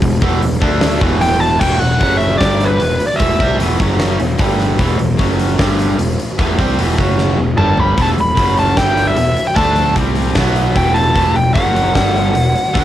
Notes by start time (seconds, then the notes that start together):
0.02 E1 E2 B2, kick, open hi-hat
0.21 E1 E2 B2 E3, kick
0.42 E1 E2 B2, open hi-hat
0.61 D2 D3 A3 D4, kick
0.81 snare, open hi-hat
1.00 E1 E2 B2 E3, kick
1.21 G5, open hi-hat
1.40 A5
1.60 E1 E2 B2 E3 G5, kick, crash
1.79 E1 E2 B2 F#5, open hi-hat
1.99 F#1 F#2 C#3 F#3, kick, open hi-hat
2.17 E5, open hi-hat
2.38 G1 G2 D3 G3 D5, kick, snare, open hi-hat
2.60 B4, open hi-hat
2.78 E1 E2 B2, open hi-hat
3.00 open hi-hat
3.07 D5
3.16 E1 E2 B2 E3 E5, kick, open hi-hat
3.38 C2 C3 G3 C4, kick, open hi-hat
3.58 E1 E2 B2 E3, open hi-hat
3.77 F#1 F#2 C#3 F#3, kick, open hi-hat
3.99 snare, open hi-hat
4.18 E1 E2 B2, open hi-hat
4.38 G1 G2 D3 G3, kick, open hi-hat
4.59 snare, open hi-hat
4.78 E1 E2 B2 E3, kick, open hi-hat
4.98 E1 E2 B2, open hi-hat
5.17 F#1 F#2 C#3 F#3, kick, open hi-hat
5.39 open hi-hat
5.58 G1 G2 D3 G3, kick, snare, open hi-hat
5.79 open hi-hat
5.98 E1 E2 B2, open hi-hat
6.20 open hi-hat
6.38 E1 E2 B2 E3, kick, open hi-hat
6.58 C2 C3 G3 C4, kick, open hi-hat
6.78 E1 E2 B2 E3, open hi-hat
6.98 F#1 F#2 C#3 F#3, kick, open hi-hat
7.18 snare
7.38 E1 E2 B2
7.57 G1 G2 D3 G3 A5, mid tom
7.77 B5, floor tom
7.97 E1 E2 B2 E3, kick, open hi-hat
8.02 A5
8.16 E1 E2 B2, open hi-hat
8.21 B5
8.34 F#1 F#2 C#3 F#3, kick, open hi-hat
8.57 A5, open hi-hat
8.75 G1 G2 D3 G3 G5, kick, snare, open hi-hat
8.97 open hi-hat
9.07 E5
9.15 E1 E2 B2, open hi-hat
9.37 open hi-hat
9.47 G5
9.55 D2 D3 A3 D4 A5, kick, open hi-hat
9.76 open hi-hat
9.94 C2 C3 G3 C4, kick, open hi-hat
10.15 open hi-hat
10.35 B1 B2 F#3 B3, kick, snare, open hi-hat
10.56 open hi-hat
10.75 E1 E2 B2 E3 G5, kick, open hi-hat
10.94 A5, open hi-hat
11.15 E1 E2 B2 E3, kick, open hi-hat
11.35 E1 E2 B2 G5, open hi-hat
11.54 F#1 F#2 C#3 F#3 F#5, kick, open hi-hat
11.76 open hi-hat
11.93 G1 G2 D3 G3, kick, snare, open hi-hat
12.16 open hi-hat
12.34 E1 E2 B2, open hi-hat
12.56 open hi-hat
12.74 D2 D3 A3 D4, kick, open hi-hat